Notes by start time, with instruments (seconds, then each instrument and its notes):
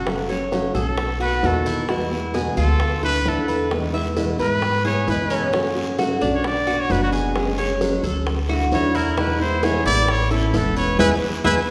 Already playing: upright bass F#1, cuban tres A4
0.06 nylon-string guitar C#3 F#3 A3 C#4 F#4, high bongo, long guiro
0.29 nylon-string guitar A3 C#4 F#4, cuban tres C#5, high bongo
0.51 nylon-string guitar C#3 F#3 A3 C#4 F#4, high bongo, short guiro
0.74 upright bass B1, nylon-string guitar A3 C#4 F#4, cuban tres A4, trumpet A4, short guiro
0.97 muted nylon-string guitar stroke, high bongo, long guiro
1.20 nylon-string guitar A3 B3 F#4, cuban tres F#4, trumpet B4, high bongo
1.43 upright bass E2, nylon-string guitar B2 D#3 A3 B3 F#4, trumpet A4, high bongo, low bongo, short guiro
1.66 cuban tres E4, high bongo, short guiro
1.88 nylon-string guitar B2 E3 G#3 B3 F#4, cuban tres E4, high bongo, long guiro
2.11 nylon-string guitar G#3 B3 F#4, high bongo
2.34 nylon-string guitar B2 E3 G#3 B3 F#4, cuban tres G#4, high bongo, short guiro
2.57 upright bass D2, nylon-string guitar G#3 B3 F#4, cuban tres F4, trumpet A4, short guiro
2.80 muted nylon-string guitar stroke, high bongo, long guiro
3.02 nylon-string guitar A3 D4 E4, cuban tres A4, trumpet B4, high bongo
3.25 upright bass E2, nylon-string guitar D3 A3 D4 E4, trumpet A4, high bongo, low bongo, short guiro
3.48 cuban tres B4, high bongo, short guiro
3.71 nylon-string guitar B2 E3 G#3 B3 E4, high bongo, long guiro
3.93 nylon-string guitar G#3 B3 E4, cuban tres E5, high bongo
4.16 nylon-string guitar B2 E3 G#3 B3 E4, high bongo, short guiro
4.39 upright bass G#2, nylon-string guitar G#3 B3 E4, cuban tres B4, trumpet B4, short guiro
4.62 muted nylon-string guitar stroke, high bongo, long guiro
4.85 nylon-string guitar G#3 B3 E4, cuban tres G#4, trumpet C#5, high bongo
5.07 upright bass F#2, nylon-string guitar B2 E3 G#3 B3 E4, trumpet B4, high bongo, low bongo, short guiro
5.30 cuban tres C#4, high bongo, short guiro
5.53 nylon-string guitar C#3 F#3 A3 C#4 F#4, cuban tres C#4, high bongo, long guiro
5.75 nylon-string guitar A3 C#4 F#4, high bongo
5.98 nylon-string guitar C#3 F#3 A3 C#4 F#4, cuban tres F#4, high bongo, short guiro
6.21 upright bass B1, nylon-string guitar A3 C#4 F#4, cuban tres D4, short guiro
6.35 trumpet C#5
6.44 trumpet D5, muted nylon-string guitar stroke, high bongo, long guiro
6.67 nylon-string guitar B3 D4 F#4, cuban tres F#4, high bongo
6.80 trumpet C#5
6.90 upright bass F#1, nylon-string guitar B2 F#3 B3 D4 F#4, trumpet B4, high bongo, low bongo, short guiro
7.03 trumpet F#4
7.13 cuban tres G#4, high bongo, short guiro
7.35 nylon-string guitar F#3 G#3 C#4 G#4, high bongo, long guiro
7.58 nylon-string guitar G#3 C#4 G#4, cuban tres C#5, high bongo
7.81 nylon-string guitar F#3 G#3 C#4 G#4, high bongo, short guiro
8.03 upright bass D2, nylon-string guitar G#3 C#4 G#4, cuban tres A4, short guiro
8.26 muted nylon-string guitar stroke, high bongo, long guiro
8.49 nylon-string guitar A3 D4 E4, cuban tres F#4, high bongo
8.71 upright bass E2, nylon-string guitar D3 F#3 A3 D4 E4, trumpet C#5, high bongo, low bongo, short guiro
8.95 cuban tres E4, trumpet A#4, high bongo, short guiro
9.17 nylon-string guitar B2 E3 G#3 B3 E4, cuban tres E4, trumpet B4, high bongo, long guiro
9.40 nylon-string guitar G#3 B3 E4, trumpet C5, high bongo
9.63 nylon-string guitar B2 E3 G#3 B3 E4, cuban tres G#4, trumpet C#5, high bongo, short guiro
9.85 upright bass A1, nylon-string guitar G#3 B3 E4, cuban tres E4, trumpet D5, short guiro
10.08 trumpet C#5, muted nylon-string guitar stroke, high bongo, long guiro
10.31 nylon-string guitar B3 C#4 E4, trumpet E4, cuban tres A4, high bongo
10.53 upright bass E1, nylon-string guitar E3 B3 C#4 E4, trumpet A4, high bongo, low bongo, short guiro
10.77 cuban tres B4, trumpet C#5, high bongo, short guiro
10.98 upright bass E2, nylon-string guitar G#3 B3 E4, cuban tres E4 G#4 B4, trumpet B4, low bongo, long guiro
11.44 upright bass E2, nylon-string guitar G#3 B3 E4, cuban tres E4 G#4 B4, trumpet B4, low bongo, long guiro